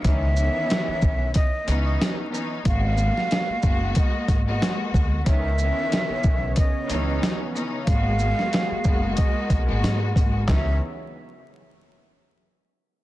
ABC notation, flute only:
X:1
M:4/4
L:1/16
Q:"Swing 16ths" 1/4=92
K:C#dor
V:1 name="Flute"
e8 d3 d2 z3 | ^e8 d3 d2 z3 | e8 d3 d2 z3 | ^e8 d3 d2 z3 |
e2 z12 z2 |]